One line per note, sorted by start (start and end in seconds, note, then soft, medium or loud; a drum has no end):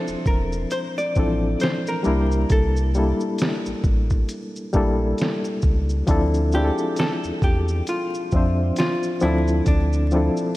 0.00 1.22 F3 medium
0.00 1.16 C4 medium
0.00 1.17 D4 medium
0.00 1.18 E4 medium
0.00 0.23 A4 medium
0.00 1.19 A4 medium
0.00 0.79 C5 medium
0.00 0.78 E5 medium
0.08 0.15 E1 soft
0.08 shaker soft
0.26 0.66 E1 medium
0.26 0.73 A#4 medium
0.26 kick medium
0.26 shaker medium
0.52 shaker soft
0.71 0.79 C5 medium
0.71 closed hi-hat medium
0.71 shaker medium
0.98 1.61 D5 medium
0.98 shaker soft
1.15 1.56 A1 medium
1.15 1.23 E3 medium
1.15 2.06 C4 medium
1.15 2.04 D4 medium
1.15 2.05 E4 medium
1.15 kick medium
1.15 shaker soft
1.19 2.08 F3 medium
1.19 2.07 A4 medium
1.60 1.88 C5 loud
1.60 snare medium
1.60 closed hi-hat medium
1.60 shaker medium
1.87 2.51 A#4 medium
1.87 shaker medium
2.03 2.45 C2 loud
2.03 2.79 G3 medium
2.03 2.79 A#3 medium
2.03 2.80 D4 medium
2.03 2.81 E4 medium
2.03 shaker soft
2.07 2.81 A#4 medium
2.31 shaker soft
2.50 3.13 C2 loud
2.50 4.26 A4 medium
2.50 kick loud
2.50 closed hi-hat medium
2.50 shaker medium
2.76 shaker soft
2.94 4.36 G3 medium
2.94 4.36 A#3 medium
2.94 4.37 D4 medium
2.94 4.37 E4 medium
2.94 shaker soft
2.99 4.38 A4 medium
3.20 shaker soft
3.38 snare loud
3.38 closed hi-hat medium
3.38 shaker medium
3.66 3.74 A1 soft
3.66 shaker soft
3.84 4.24 A1 loud
3.84 kick medium
3.84 shaker medium
4.10 kick medium
4.10 shaker soft
4.29 closed hi-hat medium
4.29 shaker medium
4.56 shaker soft
4.73 5.14 A#1 medium
4.73 5.81 G3 medium
4.73 5.81 A#3 medium
4.73 5.82 D4 medium
4.73 5.83 E4 medium
4.73 kick medium
4.73 shaker medium
4.77 5.83 A4 medium
5.18 snare medium
5.18 closed hi-hat medium
5.18 shaker medium
5.45 shaker medium
5.62 6.03 C#2 medium
5.62 kick medium
5.62 shaker soft
5.89 shaker soft
6.07 6.71 D2 loud
6.07 6.44 F3 medium
6.07 6.45 C4 medium
6.07 6.45 D4 medium
6.07 6.46 E4 medium
6.07 kick medium
6.07 closed hi-hat medium
6.07 shaker medium
6.11 6.46 A4 medium
6.34 shaker soft
6.52 7.95 C4 medium
6.52 7.95 D4 medium
6.52 7.94 F4 medium
6.52 6.99 G4 loud
6.52 shaker soft
6.57 7.96 E4 medium
6.57 6.63 G#4 medium
6.64 8.00 A4 medium
6.78 shaker soft
6.96 7.11 A4 loud
6.96 snare loud
6.96 closed hi-hat medium
6.96 shaker medium
7.24 7.32 E2 soft
7.24 shaker soft
7.42 7.82 E2 medium
7.42 7.85 G4 medium
7.42 kick loud
7.42 shaker medium
7.68 shaker soft
7.87 8.77 F4 medium
7.87 closed hi-hat medium
7.87 shaker medium
8.14 shaker soft
8.31 8.72 F2 medium
8.31 9.20 F3 medium
8.31 9.21 C4 medium
8.31 9.22 D4 medium
8.31 kick medium
8.31 shaker soft
8.35 9.24 C5 medium
8.35 9.23 E5 medium
8.76 9.22 F4 loud
8.76 snare loud
8.76 closed hi-hat medium
8.76 shaker medium
9.03 shaker medium
9.20 9.62 D2 loud
9.20 9.96 F3 medium
9.20 9.96 C4 medium
9.20 9.97 D4 medium
9.20 9.67 E4 medium
9.20 9.98 E4 medium
9.20 shaker soft
9.25 9.98 A4 medium
9.48 shaker soft
9.66 10.29 D2 loud
9.66 10.57 D4 medium
9.66 kick medium
9.66 closed hi-hat medium
9.66 shaker medium
9.93 shaker soft
10.11 10.57 F3 medium
10.11 10.57 C4 medium
10.11 10.57 D4 medium
10.11 10.57 E4 medium
10.11 shaker soft
10.16 10.57 A4 medium
10.37 shaker soft